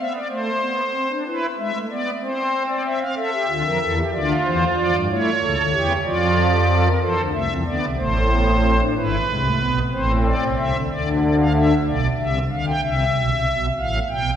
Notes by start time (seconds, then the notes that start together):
0.00 B3 E5
0.14 D5
0.29 A3 C5
0.61 B3
0.94 C4
1.10 D4
1.27 E4 B4
1.58 G#3 E5
1.75 A3
1.91 B3 D5
2.22 C4 C5
2.69 D5
2.85 E5
3.00 F5
3.15 A4 E5
3.33 G4
3.49 D2 D3 F4
3.65 F2 F3 A#4
3.81 E2 E3 A4
3.97 G4
4.13 D2 D3 F4 D5
4.44 E2 E3 C5
4.76 F2 F3 D5
4.93 G2 G3
5.10 A3 E4 C#5
5.42 C#2 C#3 A4
5.57 D2 D3
5.73 E2 E3 G4
6.05 F2 F3 F4 D5
6.53 G4
6.70 A4
6.85 A#4
7.00 E2 E3 A4 C5
7.18 D2 D3
7.33 C2 C3 A3 E5
7.49 E2 E3 C4
7.65 D2 D3 B3 D5
7.81 C2 C3
7.97 A1 A2 A3 C5
8.31 B3
8.62 C4
8.80 D4
8.96 G#1 G#2 E4 B4
9.28 C2 C3 G#3
9.45 A3
9.60 B1 B2 B3
9.92 A1 A2 C4 C5
10.24 D5
10.41 B1 B2
10.57 C2 C3 E5
10.73 D2 D3
10.89 D2 D3 D5
11.21 D5
11.38 F5
11.54 E5
11.87 B1 B2 D5
12.18 C2 C3 E5
12.51 D2 D3 F5
12.66 G5
12.82 C2 C3 E5
13.15 B1 B2
13.30 C2 C3
13.47 B1 B2
13.78 A1 A2 F5
14.10 B1 B2 G5